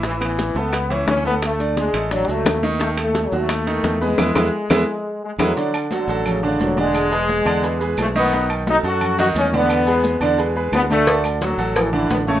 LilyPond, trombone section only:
\new Staff \with { instrumentName = "Trombone section" } { \time 4/4 \key d \lydian \tempo 4 = 174 e8 e4 b4 cis'8 cis'8 b8 | a4 gis4 fis8 a4 r8 | \tuplet 3/2 { a8. r16 a8~ a8 fis8 a8~ } a4. gis8~ | gis2. gis8 fis8~ |
fis8 r8 d4 cis8 cis8 fis8 gis8~ | gis2~ gis8 r8 a8 b8~ | b8 r8 dis'8 fis'4 fis'8 cis'8 b8~ | b4. r4. b8 a8~ |
a8 r8 fis4 e8 e8 b8 a8 | }